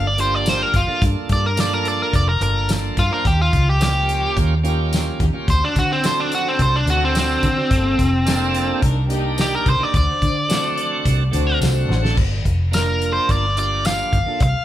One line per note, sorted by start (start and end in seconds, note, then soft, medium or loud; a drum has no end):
0.00 0.63 G1 medium
0.07 0.19 D5 medium
0.17 0.79 A#3 medium
0.17 0.80 D4 medium
0.17 0.80 F4 medium
0.17 0.80 G4 medium
0.17 0.35 C5 loud
0.17 closed hi-hat medium
0.35 0.49 D5 medium
0.46 0.62 C5 loud
0.46 snare loud
0.46 closed hi-hat medium
0.46 tambourine loud
0.62 0.75 A#4 medium
0.74 0.86 G1 medium
0.74 1.02 F4 loud
0.74 kick medium
0.74 closed hi-hat medium
0.87 1.49 A#3 medium
0.87 1.49 D4 medium
0.87 1.50 F4 medium
0.87 1.50 A4 medium
0.87 muted fingered electric bass stroke soft
1.02 1.14 G2 loud
1.02 kick loud
1.02 closed hi-hat medium
1.29 2.03 G2 loud
1.29 1.45 D5 loud
1.29 kick medium
1.29 closed hi-hat medium
1.46 1.58 A#4 medium
1.56 2.31 A#3 medium
1.56 2.31 D4 medium
1.56 2.32 F4 medium
1.56 2.32 A4 medium
1.56 1.73 D5 medium
1.56 snare loud
1.56 closed hi-hat medium
1.56 tambourine loud
1.73 1.86 A#4 medium
1.85 2.01 D5 medium
1.85 closed hi-hat medium
2.02 2.14 A#4 medium
2.13 2.38 F1 medium
2.13 2.28 D5 medium
2.13 kick medium
2.13 closed hi-hat medium
2.29 2.42 A#4 medium
2.40 2.90 G1 medium
2.40 3.02 A#3 medium
2.40 3.03 D4 medium
2.40 3.03 F4 medium
2.40 3.03 A4 medium
2.40 2.69 A#4 loud
2.40 closed hi-hat medium
2.69 snare loud
2.69 closed hi-hat medium
2.69 tambourine loud
2.97 3.09 G2 medium
2.97 3.12 F4 medium
2.97 kick medium
2.97 closed hi-hat medium
3.10 3.25 A#3 medium
3.10 3.25 D4 medium
3.10 3.25 F4 medium
3.10 3.27 A#4 loud
3.10 3.26 C5 medium
3.24 3.49 D#2 loud
3.24 3.80 C#4 medium
3.24 3.81 D#4 medium
3.24 3.81 G4 medium
3.24 3.40 G4 medium
3.24 kick loud
3.24 closed hi-hat medium
3.41 3.67 F4 medium
3.53 4.26 C#2 medium
3.53 kick medium
3.53 closed hi-hat medium
3.69 3.82 G4 medium
3.80 4.54 A#3 medium
3.80 4.55 C#4 medium
3.80 4.55 F4 medium
3.80 4.55 G4 medium
3.80 4.36 G4 loud
3.80 snare loud
3.80 closed hi-hat medium
3.80 tambourine loud
4.09 closed hi-hat medium
4.36 5.09 D#2 medium
4.36 kick medium
4.36 closed hi-hat medium
4.63 5.26 A#3 medium
4.63 4.92 C#4 medium
4.63 5.26 C#4 medium
4.63 4.92 D#4 medium
4.63 5.26 F4 medium
4.63 4.92 G4 medium
4.63 5.27 G4 medium
4.63 closed hi-hat medium
4.93 snare loud
4.93 closed hi-hat medium
4.93 tambourine loud
5.19 5.32 D#2 medium
5.19 5.34 C#4 medium
5.19 5.34 D#4 medium
5.19 5.35 G4 medium
5.19 kick medium
5.19 closed hi-hat medium
5.33 5.48 A#3 medium
5.33 5.48 C#4 medium
5.33 5.48 F4 medium
5.33 5.48 G4 medium
5.33 muted fingered electric bass stroke soft
5.47 5.60 D2 loud
5.47 6.04 C4 medium
5.47 6.04 D4 medium
5.47 6.04 F#4 medium
5.47 5.63 C5 loud
5.47 kick loud
5.47 closed hi-hat medium
5.64 5.77 D4 medium
5.76 6.49 D3 loud
5.76 5.91 F#4 medium
5.76 kick medium
5.76 closed hi-hat medium
5.92 6.05 C4 medium
6.02 6.77 C4 medium
6.02 6.77 D4 medium
6.02 6.78 F#4 medium
6.02 6.78 A4 medium
6.02 6.19 C5 medium
6.02 snare loud
6.02 closed hi-hat medium
6.02 tambourine loud
6.20 6.32 D4 medium
6.32 6.47 F#4 medium
6.32 closed hi-hat medium
6.48 6.60 C4 medium
6.59 6.84 C2 medium
6.59 6.75 C5 medium
6.59 kick medium
6.59 closed hi-hat medium
6.76 6.88 D4 medium
6.86 7.35 D2 medium
6.86 7.15 C4 medium
6.86 7.48 C4 medium
6.86 7.49 D4 medium
6.86 7.15 D4 medium
6.86 7.15 F#4 medium
6.86 7.49 F#4 medium
6.86 7.49 A4 medium
6.86 closed hi-hat medium
6.90 7.02 F#4 loud
7.05 7.17 C4 medium
7.15 8.80 C4 loud
7.15 snare loud
7.15 closed hi-hat medium
7.15 tambourine loud
7.42 7.55 D3 loud
7.42 7.57 C4 medium
7.42 7.57 D4 medium
7.42 7.57 F#4 medium
7.42 kick medium
7.42 closed hi-hat medium
7.56 7.70 C4 medium
7.56 7.71 D4 medium
7.56 7.71 F#4 medium
7.56 7.71 C5 medium
7.71 7.95 G1 loud
7.71 8.27 A#3 medium
7.71 8.27 F4 medium
7.71 8.27 A4 medium
7.71 kick loud
7.71 closed hi-hat medium
7.99 8.72 F1 medium
7.99 kick medium
7.99 closed hi-hat medium
8.25 8.82 A#3 medium
8.25 8.82 D4 medium
8.25 8.82 F4 medium
8.25 8.83 A4 loud
8.25 snare loud
8.25 closed hi-hat medium
8.25 tambourine loud
8.54 closed hi-hat medium
8.81 9.56 C2 medium
8.81 9.04 D4 loud
8.81 9.05 D#4 medium
8.81 9.05 A#4 loud
8.81 kick medium
8.81 closed hi-hat medium
9.09 9.71 A#3 medium
9.09 9.72 D4 medium
9.09 9.38 D4 medium
9.09 9.72 D#4 medium
9.09 9.38 D#4 medium
9.09 9.72 G4 loud
9.09 9.39 G4 loud
9.09 closed hi-hat medium
9.38 9.53 G4 loud
9.38 snare loud
9.38 closed hi-hat medium
9.38 tambourine loud
9.55 9.67 A#4 loud
9.65 9.79 C2 medium
9.65 9.80 D4 medium
9.65 9.80 D#4 medium
9.65 9.81 A#4 medium
9.65 9.83 C5 medium
9.65 kick medium
9.65 closed hi-hat medium
9.79 9.94 A#3 medium
9.79 9.94 D4 medium
9.79 9.94 D#4 medium
9.79 9.94 G4 medium
9.79 9.95 D5 medium
9.79 muted fingered electric bass stroke soft
9.93 10.06 D2 loud
9.93 10.49 D4 medium
9.93 10.50 F#4 medium
9.93 10.50 C5 medium
9.93 11.59 D5 loud
9.93 kick loud
9.93 closed hi-hat medium
10.22 10.95 D3 loud
10.22 kick medium
10.22 closed hi-hat medium
10.49 11.23 A3 medium
10.49 11.23 C4 medium
10.49 11.24 D4 medium
10.49 11.24 F#4 medium
10.49 snare loud
10.49 closed hi-hat medium
10.49 tambourine loud
10.78 closed hi-hat medium
11.05 11.30 C2 medium
11.05 kick medium
11.05 closed hi-hat medium
11.31 11.58 D2 medium
11.31 11.94 A3 medium
11.31 11.95 C4 medium
11.31 11.61 D4 medium
11.31 11.95 D4 medium
11.31 11.61 F#4 medium
11.31 11.95 F#4 loud
11.31 11.61 C5 loud
11.31 11.46 D5 medium
11.31 closed hi-hat medium
11.48 11.60 F#5 medium
11.61 11.86 C2 medium
11.61 12.13 F#5 medium
11.61 snare loud
11.61 closed hi-hat medium
11.61 tambourine loud
11.88 12.14 A1 medium
11.88 12.03 D4 medium
11.88 12.03 F#4 medium
11.88 12.03 C5 medium
11.88 snare medium
12.02 12.17 A3 medium
12.02 12.17 C4 medium
12.02 12.17 D4 medium
12.02 12.18 A4 loud
12.02 snare medium
12.17 12.42 G1 medium
12.17 kick loud
12.17 crash medium
12.45 13.18 F1 medium
12.45 kick medium
12.45 closed hi-hat medium
12.71 13.46 A#3 medium
12.71 13.46 D4 medium
12.71 13.47 F4 medium
12.71 13.47 A#4 medium
12.71 13.12 A#4 medium
12.71 snare loud
12.71 closed hi-hat medium
12.71 tambourine loud
13.02 closed hi-hat medium
13.12 13.30 C5 medium
13.29 14.02 G1 medium
13.29 13.58 D5 medium
13.29 kick medium
13.29 closed hi-hat medium
13.56 14.18 A#3 medium
13.56 14.18 D4 medium
13.56 14.18 F4 medium
13.56 14.19 G4 medium
13.56 13.86 D5 medium
13.56 closed hi-hat medium
13.85 14.42 F5 medium
13.85 snare loud
13.85 closed hi-hat medium
13.85 tambourine loud
14.13 14.25 G1 medium
14.13 kick medium
14.13 closed hi-hat medium
14.26 14.40 A#3 medium
14.26 14.41 D4 medium
14.26 14.41 F4 medium
14.26 14.41 A4 medium
14.26 muted fingered electric bass stroke soft
14.40 14.53 C2 loud
14.40 14.65 F5 loud
14.40 kick loud
14.40 closed hi-hat medium